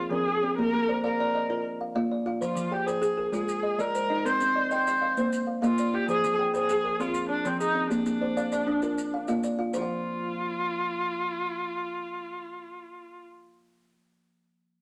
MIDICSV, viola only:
0, 0, Header, 1, 2, 480
1, 0, Start_track
1, 0, Tempo, 304414
1, 916, Time_signature, 12, 3, 24, 8
1, 23360, End_track
2, 0, Start_track
2, 0, Title_t, "Viola"
2, 0, Program_c, 0, 41
2, 196, Note_on_c, 0, 68, 100
2, 868, Note_off_c, 0, 68, 0
2, 919, Note_on_c, 0, 70, 108
2, 1591, Note_off_c, 0, 70, 0
2, 1646, Note_on_c, 0, 70, 90
2, 2545, Note_off_c, 0, 70, 0
2, 3823, Note_on_c, 0, 65, 80
2, 4320, Note_on_c, 0, 67, 78
2, 4344, Note_off_c, 0, 65, 0
2, 4517, Note_on_c, 0, 68, 79
2, 4541, Note_off_c, 0, 67, 0
2, 5231, Note_off_c, 0, 68, 0
2, 5240, Note_on_c, 0, 68, 86
2, 5995, Note_on_c, 0, 70, 98
2, 6019, Note_off_c, 0, 68, 0
2, 6714, Note_on_c, 0, 72, 100
2, 6737, Note_off_c, 0, 70, 0
2, 7429, Note_off_c, 0, 72, 0
2, 7461, Note_on_c, 0, 72, 90
2, 8341, Note_off_c, 0, 72, 0
2, 8886, Note_on_c, 0, 65, 95
2, 9371, Note_on_c, 0, 67, 104
2, 9395, Note_off_c, 0, 65, 0
2, 9599, Note_off_c, 0, 67, 0
2, 9615, Note_on_c, 0, 68, 102
2, 10048, Note_off_c, 0, 68, 0
2, 10363, Note_on_c, 0, 68, 97
2, 11045, Note_on_c, 0, 65, 89
2, 11069, Note_off_c, 0, 68, 0
2, 11499, Note_off_c, 0, 65, 0
2, 11508, Note_on_c, 0, 62, 82
2, 11775, Note_on_c, 0, 60, 84
2, 11799, Note_off_c, 0, 62, 0
2, 12001, Note_off_c, 0, 60, 0
2, 12010, Note_on_c, 0, 63, 88
2, 12445, Note_off_c, 0, 63, 0
2, 12469, Note_on_c, 0, 62, 84
2, 14801, Note_off_c, 0, 62, 0
2, 15373, Note_on_c, 0, 65, 90
2, 20828, Note_off_c, 0, 65, 0
2, 23360, End_track
0, 0, End_of_file